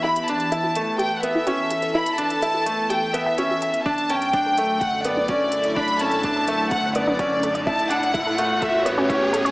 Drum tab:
HH |-xxxx-x-x-x-x-xx|-xxxx-x-x-x-x-xx|-xxxx-x-x-x-x-xx|-xxxx-x-x-x-x-xx|
BD |----------------|----------------|o---o---o---o---|o---o---o---o---|

HH |-xxxx-x-x-x-x-xx|
BD |o---o---o---o---|